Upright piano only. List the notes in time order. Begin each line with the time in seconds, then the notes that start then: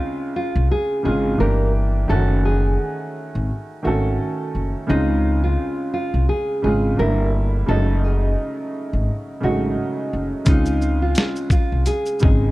Already playing: C#3 G#3 C4 F4
1.03 C#3 G#3 C4
1.08 F4
1.38 E3 A3 D4
1.42 A#3 G4
2.08 D#3 A3 C#4
2.12 F#4
3.83 D#3 A3 C#4
3.87 A4
4.87 C#3 G#3 C4
4.91 F4
6.62 C#3 G#3 C4
6.67 F4
6.97 D3 G3 A3
7.01 E4
7.07 A#3
7.66 C#3 F#3 G#3
7.71 D#4
7.76 A3
9.41 C#3 F#3 G#3
9.45 D#4
9.50 A3
10.45 C#3 G#3 C4
10.49 F4
12.20 C#3 G#3 C4
12.25 D#4